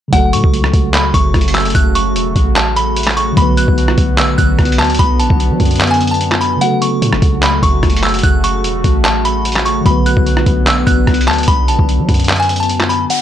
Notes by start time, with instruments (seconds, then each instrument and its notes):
0.08 tine electric piano C#3 F#3
0.13 808-style bass F#1, ambient pad C#3 A3 F#4, tine electric piano A3 F#4, synth bell F#5, kick, closed hi-hat
0.18 tine electric piano A4
0.33 808-style bass A2, synth bell C#6, closed hi-hat
0.44 808-style bass C#2, kick
0.54 closed hi-hat
0.64 cross-stick
0.73 808-style bass C#2, kick, closed hi-hat
0.94 synth bell B5, clap, closed hi-hat
1.14 808-style bass F#1, synth bell C#6, kick, closed hi-hat
1.34 808-style bass F#1, kick, cross-stick, closed hi-hat
1.41 closed hi-hat
1.48 closed hi-hat
1.55 synth bell E6, clap, closed hi-hat
1.60 closed hi-hat
1.65 closed hi-hat
1.70 closed hi-hat
1.75 808-style bass F#1, synth bell F#6, kick, closed hi-hat
1.95 synth bell C#6, closed hi-hat
2.15 808-style bass E1, closed hi-hat
2.36 808-style bass A1, kick, closed hi-hat
2.56 synth bell A5, clap, closed hi-hat
2.76 synth bell B5, closed hi-hat
2.96 closed hi-hat
3.03 cross-stick, clap, closed hi-hat
3.10 closed hi-hat
3.17 synth bell C#6, closed hi-hat
3.32 tine electric piano D3 F#3
3.37 808-style bass B1, ambient pad D3 B3, tine electric piano B3 F#4, synth bell B5, kick, closed hi-hat
3.42 tine electric piano B4
3.57 synth bell F#6, closed hi-hat
3.68 808-style bass B1, kick
3.78 closed hi-hat
3.88 cross-stick
3.98 808-style bass B1, kick, closed hi-hat
4.18 synth bell E6, clap, closed hi-hat
4.38 808-style bass A1, synth bell F#6, kick, closed hi-hat
4.59 808-style bass B1, kick, cross-stick, closed hi-hat
4.65 closed hi-hat
4.72 closed hi-hat
4.79 808-style bass D2, synth bell A5, clap, closed hi-hat
4.84 closed hi-hat
4.90 closed hi-hat
4.94 closed hi-hat
4.99 808-style bass B1, synth bell B5, kick, closed hi-hat
5.19 synth bell A5, closed hi-hat
5.30 808-style bass B1, kick
5.40 closed hi-hat
5.50 808-style bass F#3
5.60 808-style bass F#2, kick, closed hi-hat, open hi-hat
5.65 closed hi-hat
5.71 closed hi-hat
5.76 closed hi-hat
5.80 clap, closed hi-hat
5.87 synth bell G#5, closed hi-hat
5.94 closed hi-hat
6.01 closed hi-hat
6.07 synth bell A5, closed hi-hat
6.14 closed hi-hat
6.21 closed hi-hat
6.32 cross-stick, clap
6.41 synth bell B5, closed hi-hat
6.57 tine electric piano C#3 F#3
6.61 ambient pad C#3 A3 F#4, tine electric piano A3 F#4, synth bell F#5, closed hi-hat
6.66 tine electric piano A4
6.82 synth bell C#6, closed hi-hat
7.02 808-style bass A2, closed hi-hat
7.13 808-style bass F#1, cross-stick
7.22 808-style bass C#2, kick, closed hi-hat
7.42 synth bell B5, clap, closed hi-hat
7.63 808-style bass F#1, synth bell C#6, kick, closed hi-hat
7.83 808-style bass F#1, kick, cross-stick, closed hi-hat
7.90 closed hi-hat
7.96 closed hi-hat
8.03 synth bell E6, clap, closed hi-hat
8.09 closed hi-hat
8.14 closed hi-hat
8.19 closed hi-hat
8.23 808-style bass F#1, synth bell F#6, kick, closed hi-hat
8.44 synth bell C#6, closed hi-hat
8.64 808-style bass E1, closed hi-hat
8.84 808-style bass A1, kick, closed hi-hat
9.05 synth bell A5, clap, closed hi-hat
9.25 synth bell B5, closed hi-hat
9.45 closed hi-hat
9.52 closed hi-hat
9.56 cross-stick, clap, closed hi-hat
9.65 synth bell C#6, closed hi-hat
9.81 tine electric piano D3 F#3
9.86 808-style bass B1, ambient pad D3 B3, tine electric piano B3 F#4, synth bell B5, kick, closed hi-hat
9.91 tine electric piano B4
10.06 synth bell F#6, closed hi-hat
10.17 808-style bass B1, kick
10.26 closed hi-hat
10.37 cross-stick
10.46 808-style bass B1, kick, closed hi-hat
10.67 synth bell E6, clap, closed hi-hat
10.87 808-style bass A1, synth bell F#6, kick, closed hi-hat
11.07 808-style bass B1, kick, cross-stick, closed hi-hat
11.14 closed hi-hat
11.21 closed hi-hat
11.28 808-style bass D2, synth bell A5, clap, closed hi-hat
11.33 closed hi-hat
11.38 closed hi-hat
11.43 closed hi-hat
11.48 808-style bass B1, synth bell B5, kick, closed hi-hat
11.68 synth bell A5, closed hi-hat
11.79 808-style bass B1, kick
11.89 closed hi-hat
11.99 808-style bass F#3
12.09 808-style bass F#2, kick, closed hi-hat, open hi-hat
12.14 closed hi-hat
12.20 closed hi-hat
12.24 closed hi-hat
12.29 clap, closed hi-hat
12.36 synth bell G#5, closed hi-hat
12.43 closed hi-hat
12.49 closed hi-hat
12.56 closed hi-hat
12.60 synth bell A5, closed hi-hat
12.69 closed hi-hat
12.80 cross-stick, clap
12.89 synth bell B5, closed hi-hat
13.10 synth bell F#5, closed hi-hat, downlifter